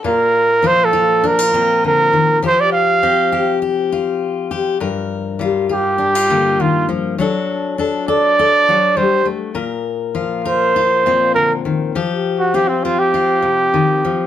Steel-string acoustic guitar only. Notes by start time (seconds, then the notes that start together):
0.04 A#2 F4
0.63 F3 F4
0.93 F4
1.24 D4
1.39 F4
1.54 A#2 C4
1.84 D3
2.13 D#3
2.42 F3 G4
3.03 C4 G4
3.32 G4
3.62 G4
3.92 F4
4.51 G4
4.80 G2 A#4
5.39 G3 F4
5.69 F4
5.98 D4
6.15 F4
6.30 D3 A#3
6.60 D#3
6.89 F3
7.18 F#3 D4 F#4 A4
7.78 D4 A4
8.08 A4
8.39 A4
8.68 F#3 F#4
8.97 G3
9.25 A3
9.55 A#2 A#4
10.15 F3 F4
10.45 A#4
10.76 F4
11.06 A#2 C4
11.36 D3
11.65 D#3
11.95 F3 G4
12.54 C4 F4
12.85 C4
13.14 F4
13.42 C3
13.74 D#3
14.05 F3